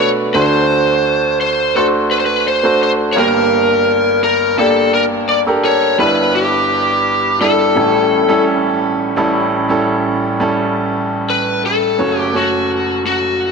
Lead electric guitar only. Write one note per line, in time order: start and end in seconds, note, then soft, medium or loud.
0.34 1.39 C5 loud
1.41 1.73 C5 medium
1.76 1.86 A4 medium
2.11 2.18 B4 medium
2.20 2.25 C5 medium
2.26 2.45 B4 medium
2.48 2.82 C5 medium
2.83 2.90 C5 loud
3.13 3.18 C#5 medium
3.18 4.22 A#4 medium
4.24 4.56 A#4 medium
4.59 4.91 A4 medium
4.94 5.03 A#4 medium
5.29 5.38 D5 medium
5.65 5.99 C#5 loud
6.00 6.32 B4 medium
6.35 7.41 G4 medium
7.41 8.43 A4 medium
11.30 11.62 B4 medium
11.66 12.19 A4 medium
12.19 12.37 G4 medium
12.36 13.02 F#4 medium
13.06 13.52 F#4 medium